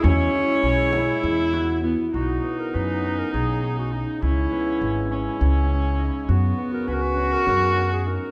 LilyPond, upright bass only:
\new Staff \with { instrumentName = "Upright bass" } { \clef bass \time 7/8 \key b \major \tempo 4 = 101 e,8 r8 b,,4 e,4. | b,,8 r8 fis,4 b,,4. | cis,8 r8 gis,,4 cis,4. | fis,8 r8 cis,4 fis,4. | }